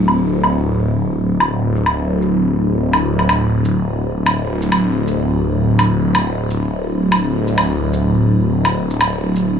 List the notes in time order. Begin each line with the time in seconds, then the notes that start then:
Already playing: D1
0.08 low woodblock, shaker
0.43 low woodblock
0.79 shaker
1.40 low woodblock
1.76 shaker
1.86 low woodblock
2.22 shaker
2.93 low woodblock, shaker
3.19 low woodblock
3.29 low woodblock
3.65 shaker
4.26 low woodblock
4.44 D1
4.62 shaker
4.72 low woodblock
5.08 shaker
5.79 low woodblock, shaker
6.15 low woodblock
6.51 shaker
7.12 low woodblock
7.48 shaker
7.58 low woodblock
7.94 shaker
8.65 low woodblock, shaker
8.91 shaker
9.01 low woodblock
9.36 shaker